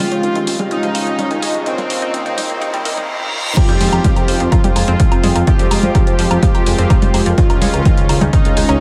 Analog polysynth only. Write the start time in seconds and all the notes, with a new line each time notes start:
Already playing: F4
0.71 D#4
1.66 C4
3.57 G4
4.52 F4
5.47 G4
7.38 F4
8.33 D#4